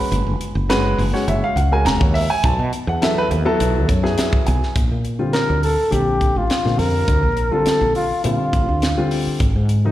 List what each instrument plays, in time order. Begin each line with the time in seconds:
Already playing: grand piano G#3 C#4 F#4 B4 B5
0.12 fretless electric bass F#1, closed hi-hat
0.27 fretless electric bass F#1
0.40 muted fretless electric bass stroke, closed hi-hat
0.55 fretless electric bass F#1
0.69 grand piano G#3 C#4 F#4 B4, snare, closed hi-hat
0.98 fretless electric bass F#1, open hi-hat
1.13 grand piano G#3 C#4 F#4 C#5, snare
1.28 fretless electric bass F#1, grand piano E5, closed hi-hat
1.44 grand piano F5
1.56 fretless electric bass C#2, grand piano F#5, closed hi-hat
1.72 grand piano G#3 C#4 F#4 A#4 G#5
1.85 fretless electric bass E1, grand piano A#5, snare, closed hi-hat
2.00 fretless electric bass D#2, grand piano C#5, kick
2.14 grand piano E5, open hi-hat
2.30 grand piano G#5
2.44 fretless electric bass B1, grand piano A5, kick, closed hi-hat
2.59 fretless electric bass B2
2.73 closed hi-hat
2.87 fretless electric bass E2, grand piano F#5
3.02 grand piano F#3 B3 E4 A4 E5, snare, closed hi-hat
3.18 grand piano B4
3.31 fretless electric bass D#2, closed hi-hat
3.45 grand piano F#3 B3 E4 A4
3.60 fretless electric bass B1, closed hi-hat
3.89 fretless electric bass F#2, grand piano C#5, kick, closed hi-hat
4.03 grand piano F#3 B3 E4 G#4, snare
4.18 grand piano E5, snare, closed hi-hat
4.33 muted fretless electric bass stroke, kick
4.47 fretless electric bass B1, grand piano G#5, closed hi-hat
4.63 snare
4.76 fretless electric bass A#1, kick, closed hi-hat
4.92 fretless electric bass A#2
5.05 closed hi-hat
5.19 grand piano D3 G3 C4 F4
5.33 muted trumpet A#4, snare, closed hi-hat
5.50 fretless electric bass D2
5.63 muted trumpet A4, open hi-hat
5.91 fretless electric bass A#1, grand piano D3 G3 C4 G4, muted trumpet G4, closed hi-hat
6.21 kick, closed hi-hat
6.36 fretless electric bass A1, muted trumpet F4
6.50 snare, closed hi-hat
6.65 fretless electric bass A#2, grand piano D3 G3 C4 F4, snare
6.79 fretless electric bass F2, muted trumpet A#4, open hi-hat
7.08 fretless electric bass D2, kick, closed hi-hat
7.23 fretless electric bass A#1
7.37 closed hi-hat
7.51 grand piano D3 G3 C4 F4, muted trumpet A4
7.66 muted fretless electric bass stroke, snare, closed hi-hat
7.81 fretless electric bass A#1
7.95 muted trumpet F4, open hi-hat
8.11 muted fretless electric bass stroke
8.24 fretless electric bass A#2, grand piano D3 G3 C4 F4, muted trumpet F4, closed hi-hat
8.53 fretless electric bass A1, kick, closed hi-hat
8.69 fretless electric bass D2
8.82 snare, closed hi-hat
8.97 grand piano D3 G3 C4 F4
9.11 open hi-hat
9.27 muted fretless electric bass stroke
9.40 fretless electric bass G#1, kick, closed hi-hat
9.56 fretless electric bass G#2
9.69 closed hi-hat
9.85 grand piano C3 F3 A#3 D#4